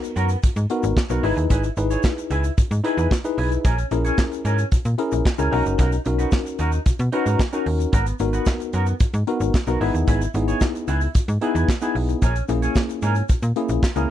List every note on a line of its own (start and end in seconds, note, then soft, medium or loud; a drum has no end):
0.00 0.35 B3 medium
0.00 0.35 D#4 medium
0.00 0.35 F#4 medium
0.00 0.35 A#4 medium
0.00 muted clean electric guitar stroke soft
0.00 closed hi-hat soft
0.04 shaker medium
0.16 0.36 F#2 medium
0.16 0.37 B3 medium
0.16 0.30 F#4 medium
0.16 0.29 A#4 medium
0.16 closed hi-hat medium
0.16 shaker medium
0.29 muted clean electric guitar stroke soft
0.29 closed hi-hat soft
0.29 shaker medium
0.43 0.49 G#2 soft
0.43 muted clean electric guitar stroke soft
0.43 kick loud
0.43 closed hi-hat medium
0.43 shaker medium
0.56 0.66 G#2 loud
0.56 muted clean electric guitar stroke soft
0.56 closed hi-hat soft
0.56 shaker medium
0.70 0.97 B3 loud
0.70 0.97 D#4 medium
0.70 0.97 F#4 medium
0.70 0.98 A#4 loud
0.70 closed hi-hat medium
0.83 0.93 G#1 loud
0.83 muted clean electric guitar stroke soft
0.83 closed hi-hat medium
0.83 shaker medium
0.96 muted clean electric guitar stroke soft
0.96 kick loud
0.96 snare loud
0.96 clap medium
0.96 shaker medium
1.10 1.20 B1 medium
1.10 1.24 B3 medium
1.10 1.23 B3 soft
1.10 1.23 D#4 medium
1.10 1.24 F#4 soft
1.10 1.24 F#4 medium
1.10 1.24 A#4 medium
1.10 1.24 A#4 loud
1.10 closed hi-hat medium
1.10 shaker medium
1.23 1.33 G#1 loud
1.23 1.67 D#4 medium
1.23 1.44 E4 medium
1.23 1.67 E4 medium
1.23 1.36 G#4 medium
1.23 1.67 G#4 medium
1.23 1.67 B4 medium
1.23 1.35 B4 loud
1.23 open hi-hat medium
1.36 1.47 D#2 medium
1.36 muted clean electric guitar stroke soft
1.36 closed hi-hat soft
1.36 shaker soft
1.50 1.70 G#1 loud
1.50 1.71 E4 medium
1.50 1.64 G#4 medium
1.50 1.62 B4 medium
1.50 kick medium
1.50 closed hi-hat medium
1.50 shaker medium
1.63 muted clean electric guitar stroke soft
1.63 closed hi-hat medium
1.63 shaker medium
1.77 1.97 G#1 loud
1.77 2.49 D#4 medium
1.77 2.49 E4 medium
1.77 2.50 G#4 medium
1.77 2.50 B4 medium
1.77 muted clean electric guitar stroke soft
1.77 closed hi-hat medium
1.77 shaker soft
1.90 2.03 E4 medium
1.90 2.04 G#4 medium
1.90 2.05 C#5 medium
1.90 closed hi-hat medium
1.90 shaker medium
2.03 muted clean electric guitar stroke soft
2.03 kick loud
2.03 snare loud
2.03 clap medium
2.03 shaker medium
2.17 muted clean electric guitar stroke soft
2.17 closed hi-hat soft
2.17 shaker medium
2.30 2.50 C#2 medium
2.30 2.51 E4 medium
2.30 2.44 G#4 medium
2.30 2.43 B4 medium
2.30 closed hi-hat medium
2.30 shaker medium
2.44 muted clean electric guitar stroke soft
2.44 closed hi-hat soft
2.44 shaker medium
2.57 2.63 G#2 soft
2.57 muted clean electric guitar stroke soft
2.57 kick loud
2.57 closed hi-hat medium
2.57 shaker medium
2.71 2.81 G#2 loud
2.71 muted clean electric guitar stroke soft
2.71 closed hi-hat medium
2.71 shaker soft
2.84 3.11 D#4 medium
2.84 3.11 E4 medium
2.84 2.98 E4 medium
2.84 3.11 G#4 medium
2.84 2.97 G#4 medium
2.84 3.11 B4 loud
2.84 2.96 B4 loud
2.84 closed hi-hat medium
2.97 3.07 E2 medium
2.97 3.10 E4 medium
2.97 3.11 G#4 medium
2.97 3.11 B4 medium
2.97 closed hi-hat medium
2.97 shaker medium
3.11 muted clean electric guitar stroke soft
3.11 kick loud
3.11 snare loud
3.11 clap medium
3.11 shaker medium
3.24 3.65 D#4 medium
3.24 3.65 E4 medium
3.24 3.65 G#4 medium
3.24 3.65 B4 loud
3.24 muted clean electric guitar stroke soft
3.24 closed hi-hat soft
3.24 shaker medium
3.38 3.58 B1 medium
3.38 3.58 E4 medium
3.38 3.51 G#4 medium
3.38 3.50 B4 medium
3.38 open hi-hat medium
3.51 muted clean electric guitar stroke soft
3.51 closed hi-hat soft
3.51 shaker medium
3.65 3.84 A#1 loud
3.65 3.85 C#4 medium
3.65 3.78 G#4 medium
3.65 3.77 A#4 medium
3.65 kick loud
3.65 closed hi-hat medium
3.65 shaker medium
3.78 muted clean electric guitar stroke soft
3.78 closed hi-hat medium
3.78 shaker medium
3.91 4.11 A#1 loud
3.91 4.63 C#4 medium
3.91 4.64 E4 medium
3.91 4.64 G#4 medium
3.91 4.64 A#4 medium
3.91 muted clean electric guitar stroke soft
3.91 closed hi-hat medium
3.91 shaker soft
4.05 4.22 C#4 medium
4.05 4.21 G#4 medium
4.05 4.21 C#5 medium
4.05 closed hi-hat soft
4.05 shaker medium
4.18 kick loud
4.18 snare loud
4.18 clap medium
4.18 shaker medium
4.32 muted clean electric guitar stroke soft
4.32 closed hi-hat soft
4.32 shaker medium
4.45 4.65 G#2 medium
4.45 4.66 C#4 medium
4.45 4.59 G#4 medium
4.45 4.57 A#4 medium
4.45 closed hi-hat medium
4.45 shaker soft
4.58 muted clean electric guitar stroke soft
4.58 closed hi-hat soft
4.58 shaker medium
4.72 4.77 A#2 soft
4.72 muted clean electric guitar stroke soft
4.72 kick loud
4.72 closed hi-hat medium
4.72 shaker medium
4.85 4.95 A#2 medium
4.85 muted clean electric guitar stroke soft
4.85 closed hi-hat medium
4.85 shaker medium
4.98 5.25 C#4 medium
4.98 5.26 E4 medium
4.98 5.26 G#4 medium
4.98 5.26 A#4 loud
4.98 closed hi-hat medium
5.12 5.22 A#1 medium
5.12 muted clean electric guitar stroke medium
5.12 closed hi-hat medium
5.12 shaker medium
5.25 muted clean electric guitar stroke soft
5.25 kick loud
5.25 snare loud
5.25 clap medium
5.25 shaker medium
5.38 5.49 C#2 medium
5.38 5.51 C#4 medium
5.38 5.51 C#4 soft
5.38 5.52 E4 medium
5.38 5.52 G#4 medium
5.38 5.52 G#4 soft
5.38 5.52 A#4 medium
5.38 5.52 A#4 loud
5.38 closed hi-hat medium
5.38 shaker medium
5.51 5.62 B1 loud
5.51 5.95 C#4 medium
5.51 5.72 D#4 medium
5.51 5.95 D#4 medium
5.51 5.65 F#4 medium
5.51 5.95 F#4 medium
5.51 5.96 A#4 loud
5.51 5.64 A#4 medium
5.51 open hi-hat medium
5.65 5.76 F#1 medium
5.65 muted clean electric guitar stroke soft
5.65 closed hi-hat soft
5.65 shaker medium
5.78 5.99 B1 loud
5.78 5.99 D#4 medium
5.78 5.92 F#4 medium
5.78 5.91 A#4 medium
5.78 kick loud
5.78 closed hi-hat medium
5.78 shaker medium
5.92 muted clean electric guitar stroke soft
5.92 closed hi-hat medium
5.92 shaker medium
6.05 6.26 B1 medium
6.05 6.78 C#4 medium
6.05 6.78 D#4 medium
6.05 6.78 F#4 medium
6.05 6.78 A#4 medium
6.05 muted clean electric guitar stroke soft
6.05 closed hi-hat medium
6.05 shaker soft
6.18 6.31 D#4 soft
6.18 6.31 F#4 medium
6.18 6.33 B4 medium
6.18 closed hi-hat soft
6.18 shaker soft
6.32 muted clean electric guitar stroke soft
6.32 kick loud
6.32 snare loud
6.32 clap medium
6.32 shaker medium
6.45 muted clean electric guitar stroke soft
6.45 closed hi-hat soft
6.45 shaker medium
6.59 6.79 D#2 medium
6.59 6.80 D#4 medium
6.59 6.72 F#4 medium
6.59 6.71 A#4 loud
6.59 closed hi-hat medium
6.59 shaker soft
6.72 muted clean electric guitar stroke soft
6.72 closed hi-hat soft
6.72 shaker medium
6.86 6.91 B2 medium
6.86 muted clean electric guitar stroke soft
6.86 kick loud
6.86 closed hi-hat medium
6.86 shaker medium
6.99 7.09 B2 loud
6.99 muted clean electric guitar stroke soft
6.99 closed hi-hat soft
6.99 shaker soft
7.12 7.40 C#4 medium
7.12 7.26 D#4 medium
7.12 7.40 D#4 medium
7.12 7.40 F#4 medium
7.12 7.25 F#4 medium
7.12 7.24 A#4 medium
7.12 7.40 B4 loud
7.12 closed hi-hat medium
7.25 7.36 G#2 medium
7.25 7.38 D#4 medium
7.25 7.39 F#4 medium
7.25 7.39 A#4 medium
7.25 closed hi-hat medium
7.25 shaker medium
7.39 kick loud
7.39 snare loud
7.39 clap medium
7.39 shaker medium
7.53 7.93 C#4 medium
7.53 7.93 D#4 medium
7.53 7.65 D#4 medium
7.53 7.93 F#4 medium
7.53 7.65 F#4 medium
7.53 7.66 A#4 medium
7.53 7.94 A#4 loud
7.53 closed hi-hat soft
7.53 shaker medium
7.66 7.86 D#2 medium
7.66 muted clean electric guitar stroke soft
7.66 open hi-hat medium
7.79 muted clean electric guitar stroke soft
7.79 closed hi-hat soft
7.79 shaker soft
7.92 8.13 G#1 loud
7.92 8.14 B3 medium
7.92 8.06 F#4 medium
7.92 8.05 A#4 medium
7.92 kick loud
7.92 closed hi-hat medium
7.92 shaker medium
8.06 muted clean electric guitar stroke soft
8.06 closed hi-hat medium
8.06 shaker medium
8.19 8.40 G#1 loud
8.19 8.92 B3 medium
8.19 8.92 D#4 medium
8.19 8.92 F#4 medium
8.19 8.92 A#4 medium
8.19 muted clean electric guitar stroke soft
8.19 closed hi-hat medium
8.19 shaker soft
8.33 8.50 B3 medium
8.33 8.50 F#4 medium
8.33 8.49 B4 medium
8.33 closed hi-hat soft
8.33 shaker medium
8.46 kick loud
8.46 snare loud
8.46 clap medium
8.46 shaker medium
8.60 muted clean electric guitar stroke soft
8.60 closed hi-hat soft
8.60 shaker medium
8.73 8.93 F#2 medium
8.73 8.94 B3 medium
8.73 8.87 F#4 medium
8.73 8.86 A#4 medium
8.73 closed hi-hat medium
8.73 shaker soft
8.86 muted clean electric guitar stroke soft
8.86 closed hi-hat soft
8.86 shaker medium
9.00 9.06 G#2 soft
9.00 muted clean electric guitar stroke soft
9.00 kick loud
9.00 closed hi-hat medium
9.00 shaker medium
9.14 9.24 G#2 loud
9.14 muted clean electric guitar stroke soft
9.14 closed hi-hat medium
9.14 shaker medium
9.27 9.54 B3 loud
9.27 9.54 D#4 medium
9.27 9.55 F#4 medium
9.27 9.55 A#4 loud
9.27 closed hi-hat medium
9.40 9.50 G#1 loud
9.40 muted clean electric guitar stroke soft
9.40 closed hi-hat medium
9.40 shaker medium
9.54 muted clean electric guitar stroke soft
9.54 kick loud
9.54 snare loud
9.54 clap medium
9.54 shaker medium
9.67 9.77 B1 medium
9.67 9.80 B3 medium
9.67 9.80 D#4 medium
9.67 9.81 F#4 medium
9.67 9.82 A#4 medium
9.67 9.81 A#4 loud
9.67 closed hi-hat medium
9.67 shaker medium
9.80 9.91 G#1 loud
9.80 10.24 B3 medium
9.80 10.24 D#4 medium
9.80 10.01 E4 medium
9.80 10.24 E4 medium
9.80 9.94 G#4 medium
9.80 10.24 G#4 medium
9.80 9.93 B4 medium
9.80 open hi-hat medium
9.94 10.04 D#2 medium
9.94 muted clean electric guitar stroke soft
9.94 closed hi-hat soft
9.94 shaker soft
10.07 10.27 G#1 loud
10.07 10.28 E4 medium
10.07 10.21 G#4 medium
10.07 10.20 B4 medium
10.07 kick loud
10.07 closed hi-hat medium
10.07 shaker medium
10.21 muted clean electric guitar stroke soft
10.21 closed hi-hat medium
10.21 shaker medium
10.34 10.54 G#1 loud
10.34 11.07 B3 medium
10.34 11.07 D#4 medium
10.34 11.07 E4 medium
10.34 11.07 G#4 medium
10.34 muted clean electric guitar stroke soft
10.34 closed hi-hat medium
10.34 shaker soft
10.48 10.60 E4 soft
10.48 10.61 G#4 medium
10.48 10.62 C#5 medium
10.48 closed hi-hat soft
10.48 shaker medium
10.61 kick loud
10.61 snare loud
10.61 clap medium
10.61 shaker medium
10.75 muted clean electric guitar stroke soft
10.75 closed hi-hat soft
10.75 shaker medium
10.88 11.08 C#2 medium
10.88 11.09 E4 medium
10.88 11.02 G#4 medium
10.88 11.00 B4 medium
10.88 closed hi-hat medium
10.88 shaker medium
11.01 muted clean electric guitar stroke soft
11.01 closed hi-hat soft
11.01 shaker medium
11.15 11.20 G#2 soft
11.15 muted clean electric guitar stroke soft
11.15 kick loud
11.15 closed hi-hat medium
11.15 shaker medium
11.28 11.38 G#2 loud
11.28 muted clean electric guitar stroke soft
11.28 closed hi-hat medium
11.28 shaker medium
11.41 11.68 B3 medium
11.41 11.69 D#4 medium
11.41 11.56 E4 medium
11.41 11.69 E4 medium
11.41 11.69 G#4 loud
11.41 11.55 G#4 medium
11.41 11.54 B4 medium
11.41 closed hi-hat medium
11.55 11.65 E2 loud
11.55 11.68 E4 medium
11.55 11.68 G#4 medium
11.55 11.69 B4 medium
11.55 closed hi-hat medium
11.55 shaker medium
11.69 kick loud
11.69 snare loud
11.69 clap medium
11.69 shaker medium
11.81 12.22 B3 medium
11.81 12.22 D#4 medium
11.81 12.22 E4 medium
11.81 11.94 E4 medium
11.81 12.22 G#4 loud
11.81 11.95 G#4 medium
11.81 11.95 B4 medium
11.81 closed hi-hat medium
11.81 shaker medium
11.95 12.15 B1 medium
11.95 muted clean electric guitar stroke soft
11.95 open hi-hat medium
12.09 muted clean electric guitar stroke soft
12.09 closed hi-hat soft
12.09 shaker soft
12.22 12.42 A#1 loud
12.22 12.43 C#4 medium
12.22 12.36 G#4 medium
12.22 12.34 A#4 medium
12.22 kick loud
12.22 closed hi-hat medium
12.22 shaker medium
12.36 muted clean electric guitar stroke soft
12.36 closed hi-hat medium
12.36 shaker medium
12.48 12.68 A#1 medium
12.48 13.21 A#3 medium
12.48 13.21 C#4 medium
12.48 13.21 E4 medium
12.48 13.21 G#4 medium
12.48 muted clean electric guitar stroke soft
12.48 closed hi-hat medium
12.48 shaker soft
12.62 12.79 C#4 medium
12.62 12.79 G#4 medium
12.62 12.78 C#5 medium
12.62 closed hi-hat medium
12.62 shaker medium
12.75 kick loud
12.75 snare loud
12.75 clap medium
12.75 shaker medium
12.89 muted clean electric guitar stroke soft
12.89 closed hi-hat soft
12.89 shaker medium
13.02 13.22 G#2 medium
13.02 13.23 C#4 medium
13.02 13.16 G#4 medium
13.02 13.14 A#4 medium
13.02 closed hi-hat medium
13.02 shaker soft
13.15 muted clean electric guitar stroke soft
13.15 closed hi-hat soft
13.15 shaker soft
13.29 13.35 A#2 soft
13.29 muted clean electric guitar stroke soft
13.29 kick loud
13.29 closed hi-hat medium
13.29 shaker medium
13.42 13.52 A#2 loud
13.42 muted clean electric guitar stroke soft
13.42 closed hi-hat medium
13.42 shaker medium
13.56 13.83 A#3 medium
13.56 13.83 C#4 medium
13.56 13.83 E4 medium
13.56 13.83 G#4 loud
13.56 closed hi-hat medium
13.69 13.79 A#1 medium
13.69 muted clean electric guitar stroke soft
13.69 closed hi-hat soft
13.69 shaker medium
13.83 muted clean electric guitar stroke soft
13.83 kick loud
13.83 snare loud
13.83 clap medium
13.83 shaker medium
13.96 14.06 C#2 medium
13.96 14.08 A#3 medium
13.96 14.08 C#4 medium
13.96 14.09 C#4 medium
13.96 14.10 E4 medium
13.96 14.10 G#4 medium
13.96 14.10 G#4 loud
13.96 14.10 A#4 medium
13.96 closed hi-hat soft
13.96 shaker medium